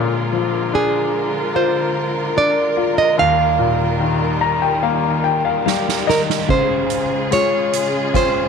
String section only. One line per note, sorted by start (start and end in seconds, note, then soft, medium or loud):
0.00 3.15 D3 medium
0.00 3.14 G#3 medium
0.00 6.45 F4 medium
0.00 6.45 A#4 medium
3.18 6.45 D#3 medium
3.18 6.45 G3 medium
6.50 8.48 C#3 medium
6.50 8.48 G#3 medium
6.50 8.48 F4 medium
6.50 8.48 G#4 medium